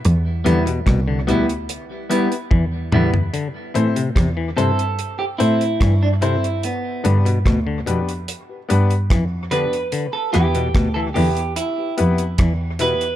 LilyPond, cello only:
\new Staff \with { instrumentName = "Cello" } { \clef bass \time 4/4 \key a \minor \tempo 4 = 73 e,8 e,16 r16 c,8 d,8 r4 e,8 e,16 r16 | r8 a,8 e,16 r16 g,8 r8 a,8 g,4 | r8 g,8 d,16 r16 f,8 r8 g,8 f,4 | r8 e,8 d,16 r16 e,8 r8 f,8 e,4 | }